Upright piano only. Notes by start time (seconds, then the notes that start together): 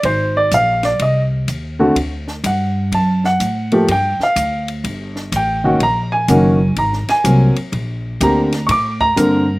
0.05 C5
0.37 D5
0.54 F5
0.85 D5
1.02 D#5
1.79 D3 A3 C4 F#4
2.46 F#5
2.94 A5
3.26 F#5
3.72 F3 A3 A#3 G4
3.91 G5
4.23 F5
5.36 G5
5.64 D#3 A#3 C#4 F#4
5.83 A#5
6.12 G#5
6.29 D#3 A#3 C#4 F#4
6.79 A#5
7.09 G#5
7.24 F#3 A#3 C4 A#4
8.22 D3 A#3 C4 G4 A#5
8.67 C#6
8.71 D6
9.01 A#5
9.16 D3 A#3 C4 A#4